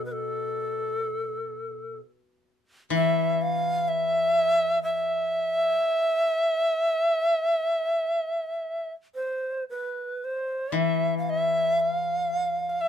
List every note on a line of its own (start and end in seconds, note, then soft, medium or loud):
0.00 1.99 B2 soft
0.06 0.14 B4 soft
0.12 1.99 A4 medium
2.90 5.73 E3 soft
2.95 3.43 E5 medium
3.42 3.90 F5 medium
3.88 4.82 E5 medium
4.83 8.92 E5 medium
9.15 9.64 C5 medium
9.70 10.26 B4 medium
10.24 10.78 C5 medium
10.72 12.88 E3 soft
10.72 11.18 E5 medium
11.18 11.31 F5 medium
11.29 11.81 E5 medium
11.80 12.69 F5 medium
12.69 12.83 F5 medium
12.81 12.88 E5 medium